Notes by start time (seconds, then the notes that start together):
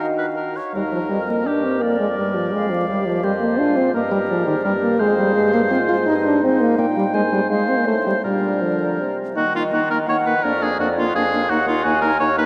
Already playing: D#3 D#4 F#4 D#5
0.18 B4
0.36 A#4
0.56 C#5
0.74 D#2 G3 D#4 A#4 D#5
0.92 F3
1.09 F2 G3 A#4
1.28 A#3
1.47 G2 D4 G4
1.64 C4
1.82 F2 A#3 D5
1.99 G#3
2.17 G2 G3 D5
2.35 F3
2.53 F2 G#3 F5
2.70 F3
2.88 D#2 G3 G4
3.06 F3
3.24 F2 G3 C5 D#5
3.41 A#3
3.59 G#2 D4 F4 F5
3.77 C4
3.94 G2 A#3 G4 A#4 D#5
4.11 G3
4.29 G#2 F3 D5
4.47 D#3
4.65 G2 G3 A#4
4.83 A#3
4.99 F2 G#3 G#4 C5
5.18 G3
5.34 G2 G#3 F5
5.54 A#3
5.70 G#2 C4 F4
5.89 F4
6.06 G2 D#4 D#5
6.25 D4
6.43 G#2 C4 D#5
6.61 A#3
6.78 A#2 A#3 G5
6.97 G3
7.13 G#2 G#3 C5 G#5
7.32 G3
7.49 G#3 C5 F5
7.68 C4
7.79 A#3
7.85 A2 A3 C5
8.06 G3
8.23 A#2 G3 D4 A#4 D5
8.62 D3 F3
8.99 C3
9.35 D#3 A#3 D#4 F#4 D#5
9.54 A#3 D#4 F4
9.72 D#3 A#3 D#4 F#4
9.90 A#3 D#4 A#4
10.07 D#3 A#3 D#4 C#5 F#5
10.26 A#3 D#4 B4
10.43 F2 A#3 D4 A#4 D5
10.62 A#3 D4 G#4
10.78 F2 A#3 D4 F#4 D5
10.98 A#3 D4 F4
11.13 F2 A#3 D4 G#4 F5
11.33 A#3 D4
11.49 D#2 A#3 D#4 F#4 F#5
11.67 A#3 D#4 F4
11.84 D#2 A#3 D#4 F#4 G#5
12.02 A#3 D#4 A#4
12.20 D#2 A#3 D#4 C#5
12.38 A#3 D#4 B4